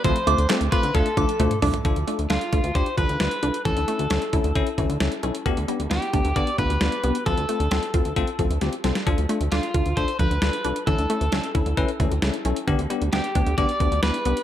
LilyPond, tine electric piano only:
\new Staff \with { instrumentName = "Tine electric piano" } { \time 4/4 \key d \dorian \tempo 4 = 133 <a c' f' a'>16 r16 <a c' f' a'>16 r16 <a c' f' a'>16 r16 <a c' f' a'>16 r16 <a d' f' a'>16 r16 <a d' f' a'>16 r16 <a d' f' c''>16 r16 <a d' f' a'>16 r16 | <d' f' a'>16 r16 <d' f' a'>16 r16 <d' f' a'>16 r16 <d' f' a'>16 r16 <d' f' g'>16 r16 <d' f' a'>16 r16 <d' f' b'>16 r16 <d' f' a'>16 r16 | <cis' e' a'>16 r16 <cis' e' a'>16 r16 <cis' e' a'>16 r16 <cis' e' a'>16 r16 <cis' e' a'>16 r16 <cis' e' a'>16 r16 <cis' e' a'>16 r16 <cis' e' a'>16 r16 | <b d' g'>16 r16 <b d' g'>16 r16 <b d' e'>16 r16 <b d' g'>16 r16 <b d' g'>16 r16 <b d' f'>16 r16 <b d' f'>16 r16 <b d' g'>16 r16 |
<c' f' a'>16 r16 <c' f' a'>16 r16 <c' f' a'>16 r16 <c' f' a'>16 r16 <c' f' a'>16 r16 <c' f' a'>16 r16 <c' f' g'>16 r16 <c' f' a'>16 r16 | <d' f' a'>16 r16 <d' f' a'>16 r16 <d' f' a'>16 r16 <d' f' a'>16 r16 <d' f' a'>16 r16 <d' f' a'>16 r16 <d' f' a'>16 r16 <d' f' a'>16 r16 | <cis' e' a'>16 r16 <cis' e' a'>16 r16 <cis' e' a'>16 r16 <cis' e' a'>16 r16 <cis' e' b'>16 r16 <cis' e' a'>16 r16 <cis' e' a'>16 r16 <cis' e' a'>16 r16 | <b d' g'>16 r16 <b d' g'>16 r16 <b d' g'>16 r16 <b d' g'>16 r16 <b d' g'>16 r16 <b d' g'>16 r16 <b d' e'>16 r16 <b d' g'>16 r16 | }